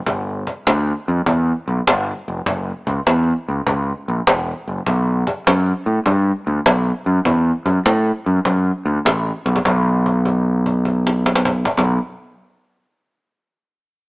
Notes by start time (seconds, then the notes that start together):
0.06 G1, cajon bass
0.47 cajon bass
0.67 D2, cajon slap
1.08 F2
1.18 cajon slap
1.26 E2, cajon bass
1.68 B1
1.87 G1, cajon slap
2.28 F1
2.38 cajon slap
2.46 F#1, cajon bass
2.87 C#2, cajon bass
3.07 E2, cajon slap
3.49 C#2
3.67 C#2, cajon bass
4.08 A#1
4.27 E1, cajon slap
4.68 F#1
4.78 cajon slap
4.86 B1, cajon bass
5.27 cajon bass
5.47 F#2, cajon slap
5.86 A2
6.06 G2, cajon bass
6.47 D2
6.66 B1, cajon slap
7.06 F#2
7.25 E2, cajon bass
7.66 F#2, cajon bass
7.86 A2, cajon slap
8.26 F#2
8.37 cajon slap
8.45 F#2, cajon bass
8.86 D2
9.05 A1, cajon slap
9.46 B1, cajon slap
9.56 cajon bass
9.65 B1, cajon bass
10.06 cajon bass
10.25 cajon bass
10.66 cajon bass
10.85 cajon bass
11.07 cajon slap
11.26 cajon slap
11.36 cajon slap
11.45 cajon bass
11.65 cajon bass
11.77 B1, cajon bass, cajon slap